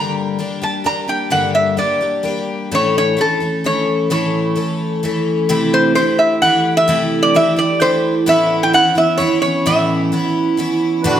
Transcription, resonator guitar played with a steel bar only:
0.00 0.63 A#5 medium
0.63 0.84 A5 medium
0.86 1.09 A#5 medium
1.09 1.31 G5 medium
1.32 1.54 F#5 medium
1.55 1.78 E5 medium
1.79 2.44 D5 medium
2.75 2.97 C#5 medium
2.98 3.20 C#5 loud
3.21 3.67 A4 medium
3.66 4.10 C#5 medium
4.11 5.00 C#5 medium
5.74 5.94 C5 medium
5.95 6.19 C5 medium
6.19 6.43 E5 medium
6.42 6.77 F#5 medium
6.77 7.25 E5 medium
7.23 7.35 D5 medium
7.36 7.59 E5 medium
7.59 7.82 D5 medium
7.82 8.14 C5 loud
8.29 8.64 E5 loud
8.63 8.74 G5 medium
8.74 8.97 F#5 loud
8.98 9.21 E5 medium
9.18 9.41 C#5 medium
9.42 9.66 C#5 medium
9.67 10.78 E5 medium

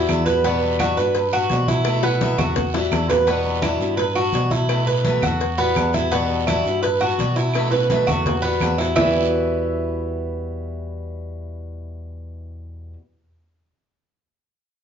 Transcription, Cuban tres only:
0.00 0.25 E4 medium
0.26 0.43 B4 medium
0.44 0.79 B3 medium
0.80 0.97 F#4 medium
0.97 1.32 B4 medium
1.33 1.67 F#4 medium
1.68 2.03 E4 medium
2.03 2.38 B3 medium
2.38 2.73 F#4 medium
2.74 3.09 E4 medium
3.10 3.27 B4 medium
3.27 3.62 B3 medium
3.62 3.97 E4 medium
3.97 4.15 B4 medium
4.15 4.50 F#4 medium
4.51 4.86 E4 medium
4.87 5.22 B4 medium
5.23 5.57 F#4 medium
5.58 5.93 B3 loud
5.94 6.11 E4 medium
6.12 6.46 B3 medium
6.47 6.82 E4 medium
6.83 7.00 B4 medium
7.01 7.35 F#4 medium
7.36 7.71 E4 medium
7.71 8.06 B4 medium
8.07 8.42 F#4 medium
8.42 8.77 B3 loud
8.78 8.95 E4 medium
8.96 12.92 E4 medium
8.96 12.93 B4 medium
8.96 12.93 E5 loud

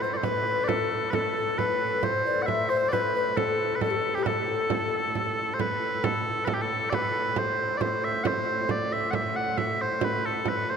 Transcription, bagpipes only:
0.02 0.13 C5 medium
0.13 0.24 C5 medium
0.13 0.17 D5 medium
0.24 0.64 B4 medium
0.64 0.68 D5 medium
0.68 1.10 A4 medium
1.10 1.58 A4 medium
1.10 1.14 B4 medium
1.58 2.04 B4 medium
2.04 2.42 C5 medium
2.42 2.70 E5 medium
2.42 2.46 F#5 medium
2.70 2.89 C5 medium
2.89 2.93 D5 medium
2.93 3.37 B4 medium
3.37 3.75 A4 medium
3.75 3.82 B4 medium
3.82 4.15 A4 medium
4.15 4.23 G4 medium
4.23 5.54 A4 medium
4.23 4.27 B4 medium
5.54 5.60 C5 medium
5.60 6.04 B4 medium
6.04 6.45 A4 medium
6.45 6.54 A4 medium
6.45 6.49 B4 medium
6.54 6.62 G4 medium
6.62 6.90 A4 medium
6.90 6.94 D5 loud
6.94 7.38 B4 loud
7.38 7.77 C5 medium
7.77 8.04 C5 medium
7.77 7.81 D5 medium
8.04 8.24 E5 medium
8.24 8.71 C5 loud
8.24 8.27 F#5 loud
8.71 8.93 D5 loud
8.93 9.11 E5 loud
9.11 9.36 E5 loud
9.11 9.15 F#5 loud
9.36 9.57 F#5 loud
9.57 9.81 E5 loud
9.81 10.04 C5 loud
10.04 10.26 B4 medium
10.26 10.48 A4 medium
10.48 10.70 B4 medium
10.70 10.77 C5 medium

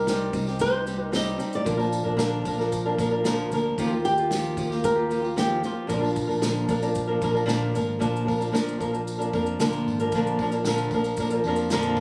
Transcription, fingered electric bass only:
0.00 0.30 C2 loud
0.33 1.35 C2 loud
1.66 2.03 A#1 loud
2.06 2.42 A#1 medium
2.45 2.94 A#1 loud
2.98 3.47 A#1 medium
3.51 3.76 D2 medium
3.78 4.53 D#2 loud
4.58 5.59 D#2 loud
5.89 6.26 A#1 loud
6.30 6.66 A#1 medium
6.69 7.18 A#1 loud
7.22 7.71 A#1 medium
7.75 7.99 G#1 medium
8.02 8.77 A#1 loud
8.80 9.29 A#1 medium
9.33 9.57 F2 medium
9.60 9.84 D2 medium
9.86 10.10 G#1 medium
10.12 10.87 A#1 loud
10.91 11.40 A#1 loud
11.44 11.98 F2 medium
11.96 12.00 G#1 medium

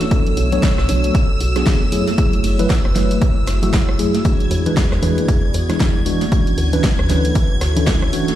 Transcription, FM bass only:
0.37 0.59 B1 medium
0.78 0.87 B1 medium
0.89 1.11 B1 medium
1.41 1.94 B1 medium
1.92 2.14 F#2 medium
2.44 2.66 F#1 loud
2.85 2.94 F#1 medium
2.96 3.18 F#1 medium
3.47 4.01 F#1 medium
3.99 4.21 F#2 medium
4.51 4.73 E2 medium
4.92 5.01 E2 loud
5.03 5.25 E2 medium
5.54 6.07 E2 medium
6.06 6.28 E1 medium
6.58 6.80 D2 medium
6.99 7.08 D2 loud
7.09 7.32 D2 medium
7.61 8.14 D2 loud
8.13 8.35 D1 medium

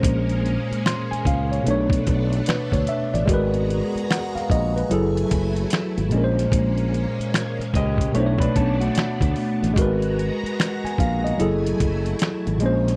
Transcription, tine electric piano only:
0.00 1.61 A#2 medium
0.00 1.62 G#3 medium
0.00 1.67 C#4 medium
0.00 0.86 C5 medium
0.86 1.09 C6 medium
1.11 1.25 G#5 medium
1.27 1.50 F5 medium
1.52 1.69 C#5 medium
1.63 3.23 B2 medium
1.63 3.25 A3 medium
1.68 3.26 D4 medium
1.68 2.48 C#5 medium
2.48 2.72 B4 medium
2.73 2.87 C#5 medium
2.89 3.12 E5 medium
3.14 3.52 D5 medium
3.26 4.86 G#3 medium
3.26 4.87 F#4 medium
3.31 4.09 A#4 medium
3.31 4.10 B4 medium
4.11 4.34 F#5 medium
4.35 4.50 F5 medium
4.51 4.74 D#5 medium
4.76 5.14 B4 medium
4.90 6.12 F#3 medium
4.90 6.12 E4 medium
4.90 6.13 G#4 medium
4.90 6.14 A4 medium
6.10 8.10 A#2 medium
6.10 8.11 G#3 medium
6.15 8.12 C#4 medium
6.15 6.23 A#4 medium
6.24 8.17 C5 medium
8.12 9.72 B2 medium
8.12 9.73 A3 medium
8.17 9.75 D4 medium
8.17 8.25 C5 medium
8.26 9.79 C#5 medium
9.74 11.34 G#3 medium
9.74 11.36 F#4 medium
9.79 11.37 A#4 medium
9.79 11.38 B4 medium
10.85 10.99 G#5 medium
11.00 11.23 F5 medium
11.24 11.62 D#5 medium
11.38 12.60 F#3 medium
11.38 12.61 E4 medium
11.38 12.61 G#4 medium
11.42 12.62 A4 medium
12.58 12.96 A#2 medium
12.58 12.96 G#3 medium
12.63 12.96 C#4 medium
12.63 12.96 C5 medium

